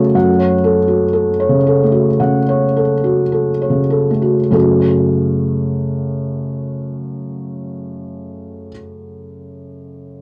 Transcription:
0.00 0.17 C#3 soft
0.00 0.34 A3 soft
0.00 0.29 F#4 soft
0.00 0.17 A4 soft
0.00 0.16 C#5 soft
0.00 0.15 F#5 soft
0.15 2.17 F#2 soft
0.15 0.54 F#5 soft
0.39 0.79 C#5 soft
0.64 1.04 A4 soft
0.88 1.29 F#4 soft
1.13 1.55 A4 soft
1.40 1.82 C#5 soft
1.49 2.06 C#3 soft
1.66 2.10 A4 soft
1.83 2.42 A3 soft
1.92 2.37 F#4 soft
2.20 2.80 C#3 soft
2.20 2.65 F#5 soft
2.49 2.93 C#5 soft
2.77 3.22 A4 soft
3.04 3.50 F#4 soft
3.32 3.80 A4 soft
3.62 4.10 C#5 soft
3.70 4.36 C#3 soft
3.90 4.40 A4 soft
4.11 4.50 A3 soft
4.22 4.51 F#4 soft
4.51 8.69 F#2 soft
4.51 8.70 C#3 soft
4.51 8.69 A3 soft
4.51 8.69 C#4 soft
4.51 8.70 F#4 soft
4.51 8.70 A4 soft

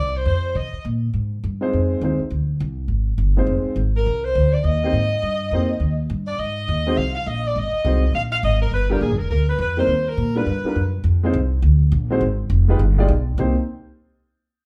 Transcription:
0.00 0.25 C2 medium
0.00 0.14 D5 medium
0.17 0.26 C5 medium
0.25 0.54 F2 medium
0.25 0.54 C5 medium
0.55 0.72 C3 medium
0.55 0.86 D#5 medium
0.73 muted upright bass stroke soft
0.85 1.13 A#2 medium
1.14 1.42 G#2 medium
1.44 1.72 G2 medium
1.61 1.99 G#3 medium
1.61 1.99 C4 medium
1.61 2.00 D#4 medium
1.61 2.00 F4 medium
1.61 2.00 C5 medium
1.73 2.01 F2 medium
2.01 2.18 D#2 medium
2.01 2.18 G#3 medium
2.01 2.18 C4 soft
2.01 2.18 D#4 soft
2.01 2.19 F4 soft
2.01 2.19 C5 medium
2.19 muted upright bass stroke soft
2.30 2.59 D2 medium
2.60 2.88 C2 medium
2.88 3.17 G#1 medium
3.18 3.46 G1 medium
3.37 3.75 G#3 medium
3.37 3.75 C4 medium
3.37 3.75 D#4 medium
3.37 3.75 F4 medium
3.37 3.76 C5 medium
3.47 3.63 F1 medium
3.64 muted upright bass stroke soft
3.76 4.05 G#1 medium
3.97 4.23 A#4 medium
4.06 4.34 C2 medium
4.24 4.53 C5 medium
4.35 4.63 D2 medium
4.53 4.64 D5 medium
4.64 4.92 D#2 medium
4.64 6.10 D#5 loud
4.83 4.93 A#3 medium
4.83 4.93 C4 medium
4.83 4.93 D#4 medium
4.83 4.94 G4 medium
4.83 4.94 C5 medium
4.93 5.21 G#2 medium
5.22 5.51 G2 medium
5.51 5.79 F2 medium
5.51 5.68 A#3 medium
5.51 5.68 C4 medium
5.51 5.68 D#4 medium
5.51 5.69 G4 medium
5.51 5.69 C5 medium
5.80 6.09 D#2 medium
6.10 6.38 G2 medium
6.27 6.38 D5 medium
6.39 6.67 G#2 medium
6.39 6.97 D#5 loud
6.68 6.97 D#2 medium
6.87 6.97 G#3 medium
6.87 6.97 C4 medium
6.87 6.97 D#4 medium
6.87 6.98 F#4 medium
6.87 6.98 C5 medium
6.97 7.26 C2 medium
6.97 7.14 F5 loud
7.15 7.26 F5 loud
7.26 7.55 A#1 medium
7.26 7.45 D#5 loud
7.47 7.57 D5 medium
7.56 7.72 G#1 medium
7.56 8.15 D#5 loud
7.73 muted upright bass stroke soft
7.84 8.13 C2 medium
7.84 8.00 G#3 medium
7.84 8.01 C4 medium
7.84 8.01 D#4 medium
7.84 8.01 F#4 medium
7.84 8.02 C5 medium
8.14 8.42 A#1 medium
8.14 8.22 F5 loud
8.32 8.37 F5 loud
8.43 8.71 G#1 loud
8.43 8.60 D#5 loud
8.62 8.72 A#4 medium
8.71 9.00 G1 medium
8.71 8.89 B4 loud
8.90 9.00 G3 medium
8.90 9.01 B3 medium
8.90 9.01 D4 medium
8.90 9.01 F4 medium
8.90 9.02 G4 medium
8.90 9.02 A#4 medium
9.01 9.11 A#1 medium
9.01 9.18 G#4 medium
9.11 9.20 G1 medium
9.19 9.30 F1 medium
9.19 9.30 A#4 medium
9.31 9.58 D2 medium
9.31 9.47 A#4 medium
9.50 9.60 B4 medium
9.58 9.87 F2 medium
9.58 9.77 B4 medium
9.77 9.88 G3 medium
9.77 9.88 A#3 medium
9.77 9.88 C4 medium
9.77 9.88 D#4 medium
9.77 9.89 A#4 medium
9.77 10.05 C5 medium
9.87 10.16 D#2 medium
10.08 10.36 A#4 medium
10.17 10.46 A#2 medium
10.35 10.46 G3 medium
10.35 10.46 B3 medium
10.35 10.46 D4 medium
10.35 10.47 F4 medium
10.35 10.47 A#4 medium
10.35 10.94 B4 medium
10.46 10.63 G2 medium
10.64 10.75 G3 medium
10.64 10.76 B3 medium
10.64 10.76 D4 medium
10.64 10.76 F4 medium
10.64 10.76 A#4 medium
10.64 muted upright bass stroke soft
10.76 11.03 F#2 medium
11.04 11.33 F2 medium
11.23 11.34 G#3 medium
11.23 11.34 C4 medium
11.23 11.34 D#4 medium
11.23 11.35 F4 medium
11.23 11.35 C5 medium
11.34 11.62 C2 medium
11.62 11.91 D2 medium
11.92 12.20 A#1 medium
12.10 12.21 G#3 medium
12.10 12.21 C4 medium
12.10 12.21 D#4 medium
12.10 12.21 F#4 medium
12.10 12.22 C5 medium
12.21 12.49 G#1 medium
12.50 12.78 F1 medium
12.68 12.79 G#3 medium
12.68 12.79 D#4 medium
12.68 12.79 F4 medium
12.68 12.80 G4 medium
12.68 12.80 B4 medium
12.79 13.08 G1 medium
12.98 13.08 G#3 medium
12.98 13.08 D#4 medium
12.98 13.08 F4 medium
12.98 13.09 G4 medium
12.98 13.09 D5 medium
13.09 13.37 B1 loud
13.38 13.54 C2 medium
13.38 13.54 A#3 medium
13.38 13.54 C4 medium
13.38 13.54 D#4 medium
13.38 13.54 G4 medium
13.38 13.55 C5 medium

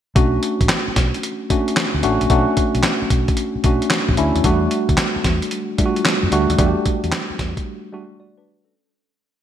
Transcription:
0.15 0.37 B1 loud
0.15 1.16 A3 medium
0.15 1.16 C#4 medium
0.15 1.16 D4 medium
0.15 1.16 F#4 medium
0.15 kick loud
0.15 closed hi-hat medium
0.43 closed hi-hat medium
0.61 0.68 A1 medium
0.61 kick medium
0.61 closed hi-hat soft
0.69 snare loud
0.69 clap medium
0.69 closed hi-hat medium
0.88 muted fingered electric bass stroke soft
0.96 1.11 B1 medium
0.96 kick medium
0.96 snare medium
0.96 closed hi-hat medium
1.14 closed hi-hat soft
1.23 closed hi-hat medium
1.50 2.00 A3 medium
1.50 2.00 C#4 medium
1.50 2.00 D4 medium
1.50 2.00 F#4 medium
1.50 kick medium
1.50 closed hi-hat medium
1.68 closed hi-hat soft
1.76 snare loud
1.76 clap medium
1.76 closed hi-hat medium
1.94 2.02 D2 medium
2.03 2.18 A1 medium
2.03 2.28 A3 medium
2.03 2.28 C#4 medium
2.03 2.29 D4 medium
2.03 2.29 F#4 loud
2.03 closed hi-hat medium
2.21 2.28 A#1 medium
2.21 closed hi-hat medium
2.30 2.44 B1 loud
2.30 3.30 A3 medium
2.30 3.30 C#4 medium
2.30 3.31 D4 medium
2.30 3.31 F#4 medium
2.30 kick loud
2.30 closed hi-hat medium
2.57 kick medium
2.57 closed hi-hat medium
2.75 2.82 B1 medium
2.75 closed hi-hat medium
2.83 snare loud
2.83 clap medium
2.83 closed hi-hat medium
3.02 muted fingered electric bass stroke soft
3.10 3.25 B1 medium
3.10 kick medium
3.10 closed hi-hat medium
3.28 kick medium
3.28 closed hi-hat soft
3.37 closed hi-hat medium
3.56 muted fingered electric bass stroke soft
3.64 3.78 B1 medium
3.64 4.14 A3 medium
3.64 4.14 C#4 medium
3.64 4.15 D4 medium
3.64 4.15 F#4 medium
3.64 kick medium
3.64 closed hi-hat medium
3.82 closed hi-hat soft
3.90 snare loud
3.90 clap medium
3.90 closed hi-hat medium
4.09 4.16 A1 medium
4.09 kick loud
4.17 4.32 D2 medium
4.17 4.42 A3 medium
4.17 4.43 C#4 medium
4.17 4.43 D4 medium
4.17 4.43 E4 medium
4.17 closed hi-hat medium
4.35 4.43 D#2 medium
4.35 closed hi-hat medium
4.44 4.66 E2 loud
4.44 5.44 G3 medium
4.44 5.45 A3 medium
4.44 5.45 D4 medium
4.44 5.45 F#4 medium
4.44 kick loud
4.44 closed hi-hat medium
4.71 closed hi-hat medium
4.89 4.96 D2 medium
4.89 kick medium
4.89 closed hi-hat soft
4.98 snare loud
4.98 clap medium
4.98 closed hi-hat medium
5.16 muted fingered electric bass stroke soft
5.24 5.39 E2 medium
5.24 kick medium
5.24 snare medium
5.24 closed hi-hat medium
5.42 closed hi-hat soft
5.51 closed hi-hat medium
5.78 6.28 G3 medium
5.78 6.29 A3 medium
5.78 6.29 D4 medium
5.78 5.87 F4 medium
5.78 kick medium
5.78 closed hi-hat medium
5.86 6.32 F#4 medium
5.96 closed hi-hat soft
6.05 snare loud
6.05 clap medium
6.05 closed hi-hat medium
6.23 6.30 F#2 medium
6.31 6.46 D2 medium
6.31 6.57 G3 medium
6.31 6.57 A3 medium
6.31 6.57 D4 medium
6.31 6.57 F#4 loud
6.31 closed hi-hat medium
6.50 6.57 D#2 medium
6.50 closed hi-hat medium
6.59 6.73 E2 loud
6.59 7.59 G3 medium
6.59 7.59 A3 medium
6.59 7.59 D4 medium
6.59 6.68 F#4 medium
6.59 kick loud
6.59 closed hi-hat medium
6.66 7.63 G4 medium
6.86 kick loud
6.86 closed hi-hat medium
7.04 7.11 E2 medium
7.04 closed hi-hat soft
7.12 snare loud
7.12 clap medium
7.12 closed hi-hat medium
7.30 muted fingered electric bass stroke soft
7.39 7.53 E2 medium
7.39 kick medium
7.39 snare medium
7.39 closed hi-hat medium
7.57 kick medium
7.57 closed hi-hat soft
7.92 8.43 G3 medium
7.92 8.43 A3 medium
7.92 8.20 D4 medium
7.92 8.19 F#4 medium
8.20 8.37 F#4 soft
8.20 8.37 D5 medium
8.38 8.63 D4 medium
8.38 8.63 B4 medium
8.64 8.90 C#4 medium
8.64 8.90 A4 medium

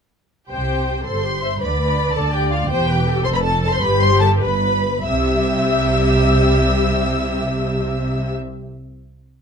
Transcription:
0.50 0.97 C2 soft
0.50 0.97 C3 soft
0.50 1.02 G4 soft
0.50 1.02 C5 soft
0.50 1.03 G5 medium
1.06 1.52 G1 soft
1.06 1.52 G2 soft
1.06 1.25 A4 soft
1.06 1.61 C5 medium
1.06 1.60 C6 medium
1.24 1.43 G4 soft
1.43 1.50 E5 soft
1.61 2.07 D2 medium
1.61 2.07 D3 medium
1.61 2.16 B4 medium
1.61 2.68 D5 medium
1.61 2.15 B5 medium
2.15 2.61 D2 medium
2.15 2.61 D3 medium
2.15 2.34 A4 medium
2.15 2.34 A5 medium
2.34 2.52 G4 medium
2.34 2.52 G5 medium
2.52 2.70 F4 medium
2.52 2.70 F5 medium
2.70 3.17 E1 medium
2.70 3.16 E2 medium
2.70 3.25 G4 medium
2.70 2.88 C5 medium
2.70 3.25 G5 medium
2.88 3.07 B4 medium
3.07 3.83 A4 medium
3.25 3.73 F1 medium
3.25 3.73 F2 medium
3.25 3.35 C5 medium
3.25 3.29 C6 loud
3.35 3.38 B4 medium
3.35 3.39 B5 medium
3.43 3.62 A4 medium
3.43 3.62 A5 medium
3.63 3.67 A4 medium
3.63 3.73 A5 medium
3.72 3.82 C5 medium
3.72 3.83 C6 medium
3.82 4.32 G1 medium
3.82 4.32 G2 medium
3.82 4.41 G4 medium
3.82 4.02 B4 medium
3.82 4.02 B5 medium
4.01 4.22 C5 medium
4.01 4.22 C6 loud
4.21 4.42 A4 medium
4.21 4.29 A5 medium
4.41 4.95 G1 medium
4.41 4.95 G2 medium
4.41 5.04 B4 medium
4.41 4.74 B4 medium
4.41 5.04 B5 medium
5.05 8.31 C2 medium
5.05 8.31 C3 medium
5.05 8.31 G3 medium
5.05 8.31 G4 medium
5.05 8.31 E5 medium
5.05 8.31 E6 medium

